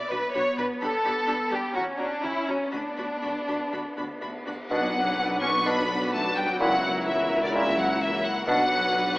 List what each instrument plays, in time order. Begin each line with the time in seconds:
Already playing: cello section B3, violin section D5
0.10 double bass section B1, viola section D4 F#4, violin section B4 B5
0.34 double bass section B1, cello section B3, viola section D4 F#4, violin section C#5 B5
0.57 double bass section B1, viola section D4 F#4, violin section B4 B5
0.81 double bass section G2, viola section D4 G4, violin section A4 B5
1.04 double bass section G2, viola section D4 G4, violin section B5
1.27 double bass section G2, viola section D4 G4, violin section B5
1.49 double bass section G2, viola section D4 G4, violin section G4 B5
1.73 double bass section E2, viola section C#4 F#4, cello section C#4, violin section F#4 A#5
1.98 double bass section E2, viola section C#4 F#4, violin section D4 A#5
2.22 double bass section E2, cello section C#4, viola section C#4 F#4, violin section E4 A#5
2.47 double bass section E2, violin section C#4 A#5, viola section C#4 F#4
2.72 double bass section D2, cello section B3, viola section D4 F#4, violin section D4 B5
2.97 double bass section D2, viola section D4 F#4, violin section B5
3.23 double bass section D2, viola section D4 F#4, violin section B5
3.48 double bass section D2, viola section D4 F#4, violin section B5
3.72 double bass section D2, viola section D4 F#4, violin section B5
3.97 double bass section D2, viola section D4 F#4, violin section B5
4.21 double bass section D2, viola section D4 F#4, violin section B5
4.46 double bass section D2, viola section D4 F#4, violin section B5
4.70 tuba B1, double bass section B1, trombone section B2 F#3, bassoon B2, cello section F#3, viola section F#3 D4, french horn section B3 D4, clarinet D4, violin section F#4 B4 F#5, flute section F#5, tam-tam
5.42 cello section C#4, violin section C#6, flute section C#6
5.66 bassoon B2, cello section B3, clarinet D4, violin section B5, flute section B5
6.13 cello section A3, flute section A5, violin section A5
6.36 cello section G3, flute section G5, violin section G5
6.60 double bass section C#2, tuba C#2, bassoon A#2, trombone section C#3, cello section F#3, clarinet E4, viola section E4, french horn section E4, violin section A#4 F#5, flute section F#5
7.07 cello section E3, flute section E5, violin section E5
7.43 cello section D3, flute section D5, violin section D5
7.54 bassoon A#2, cello section E3, french horn section A#3, clarinet E4, violin section E5, flute section E5
7.78 cello section F#3, flute section F#5, violin section F#5
8.01 cello section E3, violin section E5, flute section E5
8.24 cello section F#3, violin section F#5, flute section F#5
8.47 tuba B1, double bass section B1, trombone section B2 F#3, bassoon B2, viola section F#3 D4, cello section F#3, french horn section B3 D4, clarinet D4, violin section F#4 B4 F#5, flute section F#5